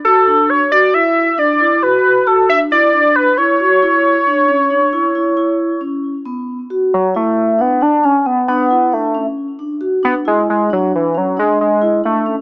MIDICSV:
0, 0, Header, 1, 3, 480
1, 0, Start_track
1, 0, Tempo, 443787
1, 54, Time_signature, 7, 2, 24, 8
1, 13427, End_track
2, 0, Start_track
2, 0, Title_t, "Analog synth lead"
2, 0, Program_c, 0, 81
2, 51, Note_on_c, 0, 69, 89
2, 51, Note_on_c, 0, 88, 89
2, 536, Note_on_c, 0, 73, 96
2, 536, Note_on_c, 0, 92, 96
2, 553, Note_off_c, 0, 69, 0
2, 553, Note_off_c, 0, 88, 0
2, 770, Note_off_c, 0, 73, 0
2, 770, Note_off_c, 0, 92, 0
2, 776, Note_on_c, 0, 74, 90
2, 776, Note_on_c, 0, 93, 90
2, 1016, Note_on_c, 0, 76, 90
2, 1016, Note_on_c, 0, 95, 90
2, 1033, Note_off_c, 0, 74, 0
2, 1033, Note_off_c, 0, 93, 0
2, 1500, Note_on_c, 0, 74, 90
2, 1500, Note_on_c, 0, 93, 90
2, 1516, Note_off_c, 0, 76, 0
2, 1516, Note_off_c, 0, 95, 0
2, 1974, Note_on_c, 0, 71, 85
2, 1974, Note_on_c, 0, 90, 85
2, 1990, Note_off_c, 0, 74, 0
2, 1990, Note_off_c, 0, 93, 0
2, 2455, Note_on_c, 0, 69, 76
2, 2455, Note_on_c, 0, 88, 76
2, 2471, Note_off_c, 0, 71, 0
2, 2471, Note_off_c, 0, 90, 0
2, 2694, Note_off_c, 0, 69, 0
2, 2694, Note_off_c, 0, 88, 0
2, 2699, Note_on_c, 0, 76, 88
2, 2699, Note_on_c, 0, 95, 88
2, 2805, Note_off_c, 0, 76, 0
2, 2805, Note_off_c, 0, 95, 0
2, 2939, Note_on_c, 0, 74, 90
2, 2939, Note_on_c, 0, 93, 90
2, 3413, Note_on_c, 0, 71, 93
2, 3413, Note_on_c, 0, 90, 93
2, 3429, Note_off_c, 0, 74, 0
2, 3429, Note_off_c, 0, 93, 0
2, 3649, Note_on_c, 0, 73, 90
2, 3649, Note_on_c, 0, 92, 90
2, 3665, Note_off_c, 0, 71, 0
2, 3665, Note_off_c, 0, 90, 0
2, 6290, Note_off_c, 0, 73, 0
2, 6290, Note_off_c, 0, 92, 0
2, 7505, Note_on_c, 0, 54, 78
2, 7505, Note_on_c, 0, 73, 78
2, 7723, Note_off_c, 0, 54, 0
2, 7723, Note_off_c, 0, 73, 0
2, 7746, Note_on_c, 0, 57, 85
2, 7746, Note_on_c, 0, 76, 85
2, 8228, Note_on_c, 0, 59, 91
2, 8228, Note_on_c, 0, 78, 91
2, 8244, Note_off_c, 0, 57, 0
2, 8244, Note_off_c, 0, 76, 0
2, 8460, Note_on_c, 0, 62, 90
2, 8460, Note_on_c, 0, 81, 90
2, 8476, Note_off_c, 0, 59, 0
2, 8476, Note_off_c, 0, 78, 0
2, 8703, Note_on_c, 0, 61, 95
2, 8703, Note_on_c, 0, 80, 95
2, 8720, Note_off_c, 0, 62, 0
2, 8720, Note_off_c, 0, 81, 0
2, 8880, Note_off_c, 0, 61, 0
2, 8880, Note_off_c, 0, 80, 0
2, 8880, Note_on_c, 0, 61, 62
2, 8880, Note_on_c, 0, 80, 62
2, 8935, Note_on_c, 0, 59, 89
2, 8935, Note_on_c, 0, 78, 89
2, 8951, Note_off_c, 0, 61, 0
2, 8951, Note_off_c, 0, 80, 0
2, 9168, Note_off_c, 0, 59, 0
2, 9168, Note_off_c, 0, 78, 0
2, 9174, Note_on_c, 0, 59, 90
2, 9174, Note_on_c, 0, 78, 90
2, 9661, Note_on_c, 0, 57, 82
2, 9661, Note_on_c, 0, 76, 82
2, 9678, Note_off_c, 0, 59, 0
2, 9678, Note_off_c, 0, 78, 0
2, 10019, Note_off_c, 0, 57, 0
2, 10019, Note_off_c, 0, 76, 0
2, 10866, Note_on_c, 0, 59, 106
2, 10866, Note_on_c, 0, 78, 106
2, 10972, Note_off_c, 0, 59, 0
2, 10972, Note_off_c, 0, 78, 0
2, 11114, Note_on_c, 0, 56, 96
2, 11114, Note_on_c, 0, 75, 96
2, 11329, Note_off_c, 0, 56, 0
2, 11329, Note_off_c, 0, 75, 0
2, 11355, Note_on_c, 0, 56, 83
2, 11355, Note_on_c, 0, 75, 83
2, 11570, Note_off_c, 0, 56, 0
2, 11570, Note_off_c, 0, 75, 0
2, 11604, Note_on_c, 0, 54, 86
2, 11604, Note_on_c, 0, 73, 86
2, 11815, Note_off_c, 0, 54, 0
2, 11815, Note_off_c, 0, 73, 0
2, 11848, Note_on_c, 0, 52, 80
2, 11848, Note_on_c, 0, 71, 80
2, 12085, Note_on_c, 0, 54, 82
2, 12085, Note_on_c, 0, 73, 82
2, 12102, Note_off_c, 0, 52, 0
2, 12102, Note_off_c, 0, 71, 0
2, 12312, Note_off_c, 0, 54, 0
2, 12312, Note_off_c, 0, 73, 0
2, 12322, Note_on_c, 0, 56, 90
2, 12322, Note_on_c, 0, 75, 90
2, 12534, Note_off_c, 0, 56, 0
2, 12534, Note_off_c, 0, 75, 0
2, 12557, Note_on_c, 0, 56, 88
2, 12557, Note_on_c, 0, 75, 88
2, 12995, Note_off_c, 0, 56, 0
2, 12995, Note_off_c, 0, 75, 0
2, 13037, Note_on_c, 0, 57, 85
2, 13037, Note_on_c, 0, 76, 85
2, 13363, Note_off_c, 0, 57, 0
2, 13363, Note_off_c, 0, 76, 0
2, 13427, End_track
3, 0, Start_track
3, 0, Title_t, "Vibraphone"
3, 0, Program_c, 1, 11
3, 51, Note_on_c, 1, 66, 80
3, 223, Note_off_c, 1, 66, 0
3, 293, Note_on_c, 1, 62, 73
3, 635, Note_off_c, 1, 62, 0
3, 774, Note_on_c, 1, 66, 80
3, 944, Note_off_c, 1, 66, 0
3, 1013, Note_on_c, 1, 64, 68
3, 1355, Note_off_c, 1, 64, 0
3, 1492, Note_on_c, 1, 62, 78
3, 1664, Note_off_c, 1, 62, 0
3, 1732, Note_on_c, 1, 64, 72
3, 1903, Note_off_c, 1, 64, 0
3, 1970, Note_on_c, 1, 66, 69
3, 2313, Note_off_c, 1, 66, 0
3, 2453, Note_on_c, 1, 66, 83
3, 2624, Note_off_c, 1, 66, 0
3, 2691, Note_on_c, 1, 62, 70
3, 2863, Note_off_c, 1, 62, 0
3, 2931, Note_on_c, 1, 64, 73
3, 3102, Note_off_c, 1, 64, 0
3, 3173, Note_on_c, 1, 62, 73
3, 3514, Note_off_c, 1, 62, 0
3, 3652, Note_on_c, 1, 64, 67
3, 3823, Note_off_c, 1, 64, 0
3, 3896, Note_on_c, 1, 66, 72
3, 4065, Note_off_c, 1, 66, 0
3, 4137, Note_on_c, 1, 64, 77
3, 4477, Note_off_c, 1, 64, 0
3, 4615, Note_on_c, 1, 62, 71
3, 4784, Note_off_c, 1, 62, 0
3, 4850, Note_on_c, 1, 61, 73
3, 5021, Note_off_c, 1, 61, 0
3, 5088, Note_on_c, 1, 62, 62
3, 5260, Note_off_c, 1, 62, 0
3, 5330, Note_on_c, 1, 64, 65
3, 5501, Note_off_c, 1, 64, 0
3, 5572, Note_on_c, 1, 64, 69
3, 5743, Note_off_c, 1, 64, 0
3, 5807, Note_on_c, 1, 64, 78
3, 6151, Note_off_c, 1, 64, 0
3, 6284, Note_on_c, 1, 61, 67
3, 6629, Note_off_c, 1, 61, 0
3, 6765, Note_on_c, 1, 59, 79
3, 7110, Note_off_c, 1, 59, 0
3, 7251, Note_on_c, 1, 66, 68
3, 7593, Note_off_c, 1, 66, 0
3, 7728, Note_on_c, 1, 64, 66
3, 8072, Note_off_c, 1, 64, 0
3, 8205, Note_on_c, 1, 62, 63
3, 8379, Note_off_c, 1, 62, 0
3, 8449, Note_on_c, 1, 62, 65
3, 8622, Note_off_c, 1, 62, 0
3, 8691, Note_on_c, 1, 61, 67
3, 8863, Note_off_c, 1, 61, 0
3, 8934, Note_on_c, 1, 59, 60
3, 9105, Note_off_c, 1, 59, 0
3, 9176, Note_on_c, 1, 62, 77
3, 9347, Note_off_c, 1, 62, 0
3, 9414, Note_on_c, 1, 64, 66
3, 9585, Note_off_c, 1, 64, 0
3, 9651, Note_on_c, 1, 62, 63
3, 9823, Note_off_c, 1, 62, 0
3, 9892, Note_on_c, 1, 61, 64
3, 10236, Note_off_c, 1, 61, 0
3, 10372, Note_on_c, 1, 62, 61
3, 10545, Note_off_c, 1, 62, 0
3, 10608, Note_on_c, 1, 66, 68
3, 10782, Note_off_c, 1, 66, 0
3, 10850, Note_on_c, 1, 62, 69
3, 11023, Note_off_c, 1, 62, 0
3, 11089, Note_on_c, 1, 64, 71
3, 11434, Note_off_c, 1, 64, 0
3, 11576, Note_on_c, 1, 62, 71
3, 11918, Note_off_c, 1, 62, 0
3, 12055, Note_on_c, 1, 61, 63
3, 12227, Note_off_c, 1, 61, 0
3, 12297, Note_on_c, 1, 62, 67
3, 12639, Note_off_c, 1, 62, 0
3, 12778, Note_on_c, 1, 64, 71
3, 12949, Note_off_c, 1, 64, 0
3, 13020, Note_on_c, 1, 62, 60
3, 13190, Note_off_c, 1, 62, 0
3, 13261, Note_on_c, 1, 61, 66
3, 13427, Note_off_c, 1, 61, 0
3, 13427, End_track
0, 0, End_of_file